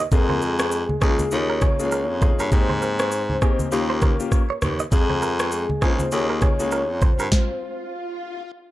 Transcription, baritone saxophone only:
0.12 0.85 F2 loud
1.02 1.23 C#2 loud
1.32 1.66 D#2 loud
1.79 2.11 C#2 medium
2.09 2.31 F2 medium
2.39 2.48 G2 medium
2.52 3.38 G#2 loud
3.72 4.15 D#2 loud
4.62 4.83 D#2 medium
4.92 5.65 F2 loud
5.82 6.03 C#2 loud
6.12 6.46 D#2 loud
6.59 6.91 C#2 medium
6.89 7.11 F2 medium
7.19 7.28 G2 medium

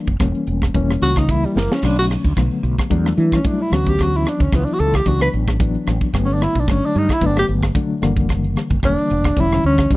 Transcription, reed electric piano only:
0.00 0.11 E3 loud
0.00 0.12 G3 medium
0.00 0.12 A#3 medium
0.00 0.12 D4 medium
0.20 0.69 E3 medium
0.20 0.69 G3 medium
0.20 0.69 A#3 medium
0.20 0.69 C#4 medium
0.75 1.23 E3 medium
0.75 1.23 G3 medium
0.75 1.23 A#3 medium
0.75 1.23 C#4 loud
1.29 1.77 E3 medium
1.29 1.77 G3 medium
1.29 1.78 A#3 medium
1.29 1.78 E4 medium
1.83 2.31 D3 medium
1.83 2.31 F#3 medium
1.83 2.32 A3 medium
1.83 2.32 C#4 medium
2.37 2.85 D3 medium
2.37 2.85 F#3 medium
2.37 2.85 A3 medium
2.37 2.85 B3 medium
2.90 3.39 F#3 medium
2.90 3.39 G3 medium
2.90 3.39 A3 medium
2.90 3.39 D4 loud
3.44 3.71 F#3 medium
3.44 3.72 G3 medium
3.44 3.72 A3 medium
3.44 3.72 E4 medium
3.72 4.44 E3 medium
3.72 4.44 F#3 medium
3.72 4.44 B3 medium
3.72 4.45 C#4 medium
4.52 5.00 E3 medium
4.52 5.00 F#3 medium
4.52 5.00 B3 medium
4.52 5.01 E4 medium
5.06 5.55 E3 medium
5.06 5.54 F#3 medium
5.06 5.55 B3 medium
5.06 5.55 D4 loud
5.60 6.08 E3 medium
5.60 6.09 F#3 medium
5.60 6.09 B3 medium
5.60 6.09 D4 medium
6.13 6.61 D3 medium
6.13 6.62 F#3 medium
6.13 6.62 A3 medium
6.13 6.62 B3 medium
6.67 7.16 D3 medium
6.67 7.16 F#3 medium
6.67 7.16 A3 medium
6.67 7.16 D4 medium
7.21 7.70 D3 medium
7.21 7.70 F#3 medium
7.21 7.70 A3 medium
7.21 7.71 B3 medium
7.75 8.01 D3 medium
7.75 8.02 F#3 medium
7.75 8.03 A3 medium
7.75 8.03 D4 medium
8.02 8.74 D3 medium
8.02 8.74 E3 medium
8.02 8.75 G3 medium
8.02 8.75 A#3 loud
8.83 9.31 D3 medium
8.83 9.31 E3 medium
8.83 9.31 G3 medium
8.83 9.32 A#3 medium
9.37 9.85 D3 medium
9.37 9.86 E3 medium
9.37 9.86 G3 medium
9.37 9.86 C#4 medium
9.90 9.97 D3 medium
9.90 9.97 E3 medium
9.90 9.97 G3 medium
9.90 9.97 C#4 medium

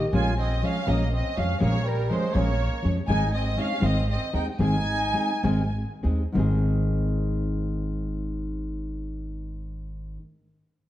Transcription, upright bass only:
0.13 0.61 A#1 medium
0.88 1.20 A#1 medium
1.37 1.53 F2 medium
1.62 2.09 A#1 medium
2.35 2.66 A#1 medium
2.85 3.00 F2 medium
3.08 3.55 G#1 medium
3.82 4.15 G#1 medium
4.34 4.50 D#2 medium
4.59 5.13 G#1 medium
5.43 5.83 G#1 medium
6.05 6.25 D#2 medium
6.35 10.16 G#1 medium

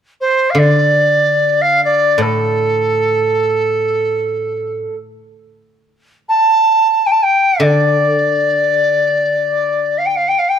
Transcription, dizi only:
0.20 0.52 C5 medium
0.50 0.61 F5 soft
0.59 1.63 D5 medium
1.61 1.83 F5 medium
1.84 2.23 D5 medium
2.22 4.95 A4 medium
6.29 7.08 A5 medium
7.06 7.13 G5 medium
7.11 7.24 A5 medium
7.23 7.64 G5 medium
7.63 9.99 D5 medium
9.98 10.07 F5 medium
10.06 10.17 G5 medium
10.16 10.30 F5 medium
10.28 10.40 G5 medium
10.39 10.50 F5 medium
10.49 10.59 G5 medium

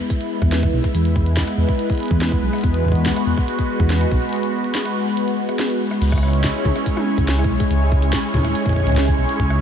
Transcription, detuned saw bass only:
0.42 0.67 E2 medium
0.74 0.80 B1 medium
0.95 1.41 E2 medium
1.58 1.65 E2 medium
2.11 2.36 E2 medium
2.43 2.49 B1 medium
2.64 3.10 E2 medium
3.27 3.34 E2 medium
3.80 4.05 E2 medium
4.12 4.18 B1 medium
6.02 6.48 C#2 loud
6.65 6.72 C#2 medium
7.18 7.43 C#2 medium
7.50 7.56 B1 medium
7.71 8.17 C#2 loud
8.34 8.41 C#2 medium
8.87 9.12 C#2 medium
9.19 9.25 B1 medium
9.40 9.61 C#2 loud

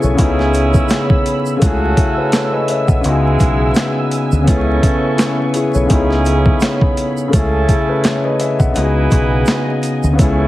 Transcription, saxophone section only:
0.19 1.24 C#4 loud
0.19 1.24 E4 medium
0.19 1.24 G#4 loud
1.63 2.67 A3 medium
1.63 2.67 C#4 medium
1.63 2.67 F#4 loud
3.05 4.10 G#3 loud
3.05 4.10 E4 medium
3.05 4.10 G#4 loud
4.47 5.52 C#4 medium
4.47 5.52 E4 medium
4.47 5.52 A4 loud
5.90 6.95 C#4 medium
5.90 6.95 E4 medium
5.90 6.95 G#4 loud
7.33 8.38 C#4 medium
7.33 8.38 E4 medium
7.33 8.38 A4 medium
8.76 9.81 E4 medium
8.76 9.81 G#4 medium
8.76 9.81 B4 loud
10.19 10.48 C#4 medium
10.19 10.48 E4 loud
10.19 10.48 A4 medium

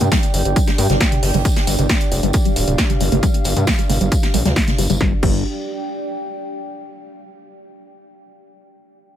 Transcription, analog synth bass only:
0.01 0.09 G2 medium
0.34 0.43 G1 loud
0.45 0.54 G1 medium
0.78 0.87 G2 loud
0.90 0.98 G1 medium
1.23 1.32 G1 medium
1.34 1.43 G1 medium
1.67 1.76 G1 loud
1.79 1.87 G1 medium
2.12 2.21 F1 loud
2.23 2.32 G1 medium
2.56 2.65 D1 loud
2.68 2.76 D1 medium
3.01 3.10 G1 medium
3.12 3.21 G1 medium
3.45 3.54 G1 loud
3.56 3.65 G2 medium
3.90 3.99 G1 loud
4.01 4.09 G1 medium
4.34 4.43 A#1 loud
4.45 4.54 D2 medium
4.78 4.87 G1 medium
4.90 4.98 G1 medium
5.01 5.13 G1 medium
5.23 5.43 G1 loud

